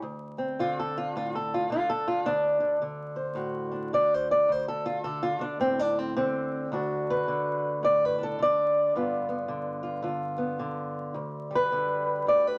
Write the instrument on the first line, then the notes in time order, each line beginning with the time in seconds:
steel-string acoustic guitar
0.02 D2
0.38 C4
0.59 D3 F4
0.79 A4
0.98 F4
1.16 A2 F4
1.35 A4
1.54 F4
1.70 D3 F4
1.90 A4
2.08 F4
2.25 D2 D4
2.60 D3
2.82 D3
3.16 C5
3.35 A2 F#4
3.72 D4
3.93 D3 D5
4.14 C5
4.31 D5
4.49 D2 C5
4.68 A4
4.86 F4
5.04 D3 A4
5.23 F4
5.39 D3 D4
5.60 A2 C4
5.79 D4
5.99 C4
6.16 D3 C4
6.72 D2 D4 F#4
7.10 B4
7.28 D3
7.83 A2 D5
8.05 B4
8.18 D4
8.23 A4
8.39 D3 D5
8.96 G2 B3 F4
9.29 B3
9.48 D3
9.83 F4
10.02 D3 F4
10.38 B3
10.59 D3
11.14 D2
11.51 G3
11.55 B4
11.72 D3
12.27 D2 D5
12.47 B4